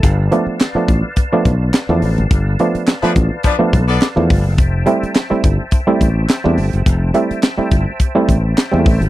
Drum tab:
HH |x-x-x-x-x-x-x-ox|x-xxx-x-x-x-x-o-|x-xxx-x-x-x-x-ox|x-xxx-x-x-x-x-ox|
CP |----x-------x---|----x-------x---|----x-------x---|----x-------x---|
SD |----o-------o---|----o-------o---|----o-------o---|----o-------o---|
BD |o-----o-o-o-----|o-----o-o-o---o-|o-----o-o-o-----|o-----o-o-o---o-|